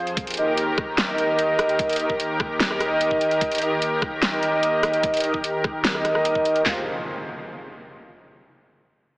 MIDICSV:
0, 0, Header, 1, 5, 480
1, 0, Start_track
1, 0, Tempo, 405405
1, 201, Time_signature, 4, 2, 24, 8
1, 10867, End_track
2, 0, Start_track
2, 0, Title_t, "Brass ensemble"
2, 0, Program_c, 0, 61
2, 442, Note_on_c, 0, 63, 90
2, 442, Note_on_c, 0, 70, 82
2, 442, Note_on_c, 0, 75, 98
2, 604, Note_off_c, 0, 70, 0
2, 605, Note_off_c, 0, 63, 0
2, 605, Note_off_c, 0, 75, 0
2, 1282, Note_on_c, 0, 63, 91
2, 1282, Note_on_c, 0, 70, 85
2, 1283, Note_on_c, 0, 75, 98
2, 2333, Note_off_c, 0, 63, 0
2, 2333, Note_off_c, 0, 70, 0
2, 2333, Note_off_c, 0, 75, 0
2, 2361, Note_on_c, 0, 63, 88
2, 2361, Note_on_c, 0, 70, 83
2, 2361, Note_on_c, 0, 75, 101
2, 2524, Note_off_c, 0, 63, 0
2, 2524, Note_off_c, 0, 70, 0
2, 2524, Note_off_c, 0, 75, 0
2, 3203, Note_on_c, 0, 63, 91
2, 3203, Note_on_c, 0, 70, 83
2, 3203, Note_on_c, 0, 75, 101
2, 4253, Note_off_c, 0, 63, 0
2, 4253, Note_off_c, 0, 70, 0
2, 4253, Note_off_c, 0, 75, 0
2, 4281, Note_on_c, 0, 63, 91
2, 4282, Note_on_c, 0, 70, 85
2, 4282, Note_on_c, 0, 75, 98
2, 4444, Note_off_c, 0, 63, 0
2, 4445, Note_off_c, 0, 70, 0
2, 4445, Note_off_c, 0, 75, 0
2, 5123, Note_on_c, 0, 70, 82
2, 5123, Note_on_c, 0, 75, 99
2, 5124, Note_on_c, 0, 63, 91
2, 6173, Note_off_c, 0, 63, 0
2, 6173, Note_off_c, 0, 70, 0
2, 6173, Note_off_c, 0, 75, 0
2, 6200, Note_on_c, 0, 63, 91
2, 6200, Note_on_c, 0, 70, 84
2, 6201, Note_on_c, 0, 75, 103
2, 6364, Note_off_c, 0, 63, 0
2, 6364, Note_off_c, 0, 70, 0
2, 6364, Note_off_c, 0, 75, 0
2, 7043, Note_on_c, 0, 63, 91
2, 7043, Note_on_c, 0, 70, 81
2, 7043, Note_on_c, 0, 75, 100
2, 7867, Note_off_c, 0, 63, 0
2, 7867, Note_off_c, 0, 70, 0
2, 7867, Note_off_c, 0, 75, 0
2, 7881, Note_on_c, 0, 65, 85
2, 7881, Note_on_c, 0, 77, 93
2, 7882, Note_on_c, 0, 72, 76
2, 8061, Note_off_c, 0, 65, 0
2, 8061, Note_off_c, 0, 72, 0
2, 8061, Note_off_c, 0, 77, 0
2, 10867, End_track
3, 0, Start_track
3, 0, Title_t, "Analog synth pad"
3, 0, Program_c, 1, 89
3, 0, Note_on_c, 1, 41, 79
3, 0, Note_on_c, 1, 53, 73
3, 0, Note_on_c, 1, 68, 74
3, 0, Note_on_c, 1, 72, 87
3, 154, Note_off_c, 1, 41, 0
3, 154, Note_off_c, 1, 53, 0
3, 154, Note_off_c, 1, 68, 0
3, 154, Note_off_c, 1, 72, 0
3, 202, Note_on_c, 1, 39, 80
3, 202, Note_on_c, 1, 51, 74
3, 202, Note_on_c, 1, 67, 71
3, 202, Note_on_c, 1, 70, 88
3, 7834, Note_off_c, 1, 39, 0
3, 7834, Note_off_c, 1, 51, 0
3, 7834, Note_off_c, 1, 67, 0
3, 7834, Note_off_c, 1, 70, 0
3, 7881, Note_on_c, 1, 53, 73
3, 7882, Note_on_c, 1, 65, 68
3, 7882, Note_on_c, 1, 68, 65
3, 7882, Note_on_c, 1, 72, 81
3, 8104, Note_off_c, 1, 53, 0
3, 8105, Note_off_c, 1, 65, 0
3, 8105, Note_off_c, 1, 68, 0
3, 8105, Note_off_c, 1, 72, 0
3, 10867, End_track
4, 0, Start_track
4, 0, Title_t, "Impact"
4, 0, Program_c, 2, 103
4, 7881, Note_on_c, 2, 60, 68
4, 9801, Note_off_c, 2, 60, 0
4, 10867, End_track
5, 0, Start_track
5, 0, Title_t, "Drums"
5, 83, Note_on_c, 9, 42, 34
5, 201, Note_off_c, 9, 42, 0
5, 201, Note_on_c, 9, 36, 115
5, 201, Note_on_c, 9, 42, 78
5, 319, Note_off_c, 9, 36, 0
5, 320, Note_off_c, 9, 42, 0
5, 322, Note_on_c, 9, 42, 45
5, 361, Note_off_c, 9, 42, 0
5, 361, Note_on_c, 9, 42, 59
5, 401, Note_off_c, 9, 42, 0
5, 401, Note_on_c, 9, 42, 74
5, 441, Note_off_c, 9, 42, 0
5, 441, Note_on_c, 9, 42, 48
5, 559, Note_off_c, 9, 42, 0
5, 681, Note_on_c, 9, 42, 74
5, 799, Note_off_c, 9, 42, 0
5, 921, Note_on_c, 9, 36, 102
5, 921, Note_on_c, 9, 37, 54
5, 1039, Note_off_c, 9, 36, 0
5, 1039, Note_off_c, 9, 37, 0
5, 1161, Note_on_c, 9, 38, 116
5, 1161, Note_on_c, 9, 42, 72
5, 1279, Note_off_c, 9, 38, 0
5, 1279, Note_off_c, 9, 42, 0
5, 1401, Note_on_c, 9, 42, 49
5, 1519, Note_off_c, 9, 42, 0
5, 1641, Note_on_c, 9, 42, 73
5, 1760, Note_off_c, 9, 42, 0
5, 1881, Note_on_c, 9, 37, 80
5, 1881, Note_on_c, 9, 42, 50
5, 2000, Note_off_c, 9, 37, 0
5, 2000, Note_off_c, 9, 42, 0
5, 2003, Note_on_c, 9, 42, 35
5, 2121, Note_on_c, 9, 36, 114
5, 2122, Note_off_c, 9, 42, 0
5, 2122, Note_on_c, 9, 42, 78
5, 2239, Note_off_c, 9, 36, 0
5, 2240, Note_off_c, 9, 42, 0
5, 2243, Note_on_c, 9, 42, 48
5, 2282, Note_off_c, 9, 42, 0
5, 2282, Note_on_c, 9, 42, 61
5, 2323, Note_off_c, 9, 42, 0
5, 2323, Note_on_c, 9, 42, 77
5, 2362, Note_off_c, 9, 42, 0
5, 2362, Note_on_c, 9, 42, 51
5, 2480, Note_off_c, 9, 42, 0
5, 2482, Note_on_c, 9, 36, 59
5, 2601, Note_off_c, 9, 36, 0
5, 2601, Note_on_c, 9, 42, 76
5, 2720, Note_off_c, 9, 42, 0
5, 2841, Note_on_c, 9, 36, 99
5, 2842, Note_on_c, 9, 37, 54
5, 2959, Note_off_c, 9, 36, 0
5, 2960, Note_off_c, 9, 37, 0
5, 3082, Note_on_c, 9, 38, 112
5, 3082, Note_on_c, 9, 42, 78
5, 3200, Note_off_c, 9, 38, 0
5, 3200, Note_off_c, 9, 42, 0
5, 3203, Note_on_c, 9, 37, 63
5, 3321, Note_off_c, 9, 37, 0
5, 3321, Note_on_c, 9, 37, 54
5, 3321, Note_on_c, 9, 42, 50
5, 3440, Note_off_c, 9, 37, 0
5, 3440, Note_off_c, 9, 42, 0
5, 3561, Note_on_c, 9, 42, 77
5, 3680, Note_off_c, 9, 42, 0
5, 3683, Note_on_c, 9, 36, 60
5, 3801, Note_off_c, 9, 36, 0
5, 3801, Note_on_c, 9, 42, 52
5, 3919, Note_off_c, 9, 42, 0
5, 3923, Note_on_c, 9, 42, 36
5, 4041, Note_off_c, 9, 42, 0
5, 4041, Note_on_c, 9, 36, 109
5, 4041, Note_on_c, 9, 42, 83
5, 4159, Note_off_c, 9, 42, 0
5, 4160, Note_off_c, 9, 36, 0
5, 4163, Note_on_c, 9, 42, 50
5, 4202, Note_off_c, 9, 42, 0
5, 4202, Note_on_c, 9, 42, 64
5, 4242, Note_off_c, 9, 42, 0
5, 4242, Note_on_c, 9, 42, 80
5, 4282, Note_off_c, 9, 42, 0
5, 4282, Note_on_c, 9, 42, 53
5, 4400, Note_off_c, 9, 42, 0
5, 4522, Note_on_c, 9, 42, 81
5, 4640, Note_off_c, 9, 42, 0
5, 4761, Note_on_c, 9, 36, 100
5, 4762, Note_on_c, 9, 37, 54
5, 4880, Note_off_c, 9, 36, 0
5, 4881, Note_off_c, 9, 37, 0
5, 5001, Note_on_c, 9, 38, 111
5, 5001, Note_on_c, 9, 42, 79
5, 5120, Note_off_c, 9, 38, 0
5, 5120, Note_off_c, 9, 42, 0
5, 5242, Note_on_c, 9, 42, 53
5, 5360, Note_off_c, 9, 42, 0
5, 5482, Note_on_c, 9, 42, 79
5, 5600, Note_off_c, 9, 42, 0
5, 5721, Note_on_c, 9, 37, 81
5, 5721, Note_on_c, 9, 42, 52
5, 5840, Note_off_c, 9, 37, 0
5, 5840, Note_off_c, 9, 42, 0
5, 5843, Note_on_c, 9, 42, 37
5, 5961, Note_off_c, 9, 42, 0
5, 5961, Note_on_c, 9, 36, 115
5, 5961, Note_on_c, 9, 42, 84
5, 6079, Note_off_c, 9, 36, 0
5, 6079, Note_off_c, 9, 42, 0
5, 6083, Note_on_c, 9, 42, 52
5, 6121, Note_off_c, 9, 42, 0
5, 6121, Note_on_c, 9, 42, 65
5, 6161, Note_off_c, 9, 42, 0
5, 6161, Note_on_c, 9, 42, 81
5, 6201, Note_off_c, 9, 42, 0
5, 6201, Note_on_c, 9, 42, 54
5, 6319, Note_off_c, 9, 42, 0
5, 6323, Note_on_c, 9, 36, 58
5, 6441, Note_off_c, 9, 36, 0
5, 6441, Note_on_c, 9, 42, 81
5, 6559, Note_off_c, 9, 42, 0
5, 6681, Note_on_c, 9, 36, 102
5, 6681, Note_on_c, 9, 37, 50
5, 6799, Note_off_c, 9, 36, 0
5, 6799, Note_off_c, 9, 37, 0
5, 6921, Note_on_c, 9, 38, 110
5, 6921, Note_on_c, 9, 42, 83
5, 7039, Note_off_c, 9, 38, 0
5, 7039, Note_off_c, 9, 42, 0
5, 7042, Note_on_c, 9, 37, 59
5, 7161, Note_off_c, 9, 37, 0
5, 7161, Note_on_c, 9, 37, 50
5, 7161, Note_on_c, 9, 42, 54
5, 7280, Note_off_c, 9, 37, 0
5, 7280, Note_off_c, 9, 42, 0
5, 7283, Note_on_c, 9, 37, 61
5, 7401, Note_on_c, 9, 42, 83
5, 7402, Note_off_c, 9, 37, 0
5, 7520, Note_off_c, 9, 42, 0
5, 7523, Note_on_c, 9, 36, 61
5, 7641, Note_off_c, 9, 36, 0
5, 7641, Note_on_c, 9, 42, 54
5, 7760, Note_off_c, 9, 42, 0
5, 7763, Note_on_c, 9, 42, 38
5, 7881, Note_off_c, 9, 42, 0
5, 7881, Note_on_c, 9, 38, 105
5, 7881, Note_on_c, 9, 39, 88
5, 7881, Note_on_c, 9, 43, 106
5, 8000, Note_off_c, 9, 38, 0
5, 8000, Note_off_c, 9, 39, 0
5, 8000, Note_off_c, 9, 43, 0
5, 10867, End_track
0, 0, End_of_file